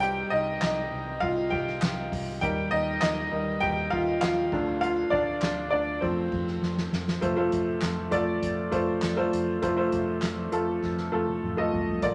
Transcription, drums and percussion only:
0.02 hi-hat pedal medium
0.02 ride medium
0.17 ride soft
0.32 ride medium
0.48 ride soft
0.62 snare loud
0.62 clap medium
0.62 ride medium
0.77 ride soft
0.92 ride medium
1.08 ride soft
1.22 kick medium
1.22 ride medium
1.37 ride soft
1.52 kick loud
1.52 ride medium
1.67 snare soft
1.67 ride soft
1.82 snare loud
1.82 clap medium
1.82 ride medium
2.12 kick medium
2.12 open hi-hat medium
2.12 ride medium
2.27 ride soft
2.42 kick loud
2.42 hi-hat pedal medium
2.42 ride medium
2.57 ride soft
2.72 ride medium
2.88 ride soft
3.02 snare loud
3.02 clap medium
3.02 ride medium
3.32 ride medium
3.48 ride soft
3.62 kick medium
3.62 ride medium
3.77 ride soft
3.92 kick loud
3.92 ride medium
4.07 ride soft
4.22 snare loud
4.22 clap medium
4.22 ride medium
4.52 kick loud
4.52 crash medium
4.68 ride soft
4.83 hi-hat pedal medium
4.83 ride medium
4.97 ride soft
5.12 kick loud
5.12 ride medium
5.27 ride soft
5.42 snare loud
5.42 clap medium
5.42 ride medium
5.57 ride soft
5.72 ride medium
5.88 ride soft
6.02 kick medium
6.02 ride medium
6.17 ride soft
6.32 kick loud
6.32 ride medium
6.47 snare soft
6.47 ride soft
6.63 snare medium
6.78 snare medium
6.93 snare medium
7.08 snare medium
7.22 kick loud
7.22 closed hi-hat medium
7.52 kick medium
7.52 closed hi-hat medium
7.82 snare loud
7.82 clap medium
7.82 closed hi-hat medium
8.12 kick medium
8.12 closed hi-hat medium
8.42 kick medium
8.42 closed hi-hat medium
8.72 kick medium
8.72 closed hi-hat medium
9.02 snare loud
9.02 clap medium
9.02 closed hi-hat medium
9.33 closed hi-hat medium
9.63 kick loud
9.63 closed hi-hat medium
9.92 kick medium
9.92 closed hi-hat medium
10.22 snare medium
10.22 clap medium
10.22 closed hi-hat medium
10.52 closed hi-hat medium
10.82 kick medium
10.82 snare medium
10.97 snare soft
11.12 high tom medium
11.27 high tom medium
11.42 mid tom medium
11.57 mid tom medium
11.72 floor tom medium
11.87 floor tom medium
12.02 kick loud
12.02 closed hi-hat medium

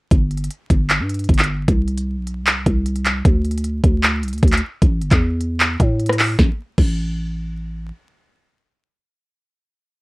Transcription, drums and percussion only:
0.11 kick loud
0.11 closed hi-hat medium
0.31 closed hi-hat soft
0.37 closed hi-hat medium
0.44 closed hi-hat medium
0.51 closed hi-hat medium
0.70 kick loud
0.70 closed hi-hat medium
0.90 clap loud
0.90 closed hi-hat medium
1.09 closed hi-hat medium
1.14 closed hi-hat medium
1.19 closed hi-hat medium
1.24 closed hi-hat soft
1.29 kick loud
1.29 closed hi-hat medium
1.34 closed hi-hat medium
1.39 clap medium
1.39 closed hi-hat medium
1.44 closed hi-hat medium
1.68 kick loud
1.68 closed hi-hat medium
1.88 closed hi-hat soft
1.98 closed hi-hat medium
2.27 closed hi-hat medium
2.47 clap loud
2.47 closed hi-hat medium
2.66 kick loud
2.66 closed hi-hat medium
2.86 closed hi-hat medium
2.96 closed hi-hat medium
3.05 clap loud
3.05 closed hi-hat medium
3.25 kick loud
3.25 closed hi-hat medium
3.45 closed hi-hat soft
3.51 closed hi-hat medium
3.58 closed hi-hat medium
3.64 closed hi-hat medium
3.84 kick loud
3.84 closed hi-hat medium
4.03 clap loud
4.03 closed hi-hat medium
4.23 closed hi-hat medium
4.28 closed hi-hat medium
4.33 closed hi-hat medium
4.38 closed hi-hat soft
4.43 kick loud
4.43 closed hi-hat medium
4.48 closed hi-hat medium
4.52 clap loud
4.52 closed hi-hat medium
4.57 closed hi-hat medium
4.82 kick loud
4.82 closed hi-hat medium
5.01 closed hi-hat medium
5.11 kick loud
5.11 clap medium
5.11 closed hi-hat medium
5.41 closed hi-hat medium
5.60 clap loud
5.60 closed hi-hat medium
5.80 kick medium
5.80 closed hi-hat medium
6.00 closed hi-hat medium
6.06 cross-stick medium
6.06 closed hi-hat medium
6.13 closed hi-hat medium
6.19 clap loud
6.19 open hi-hat medium
6.39 kick loud
6.39 snare medium
6.78 kick loud
6.78 crash medium

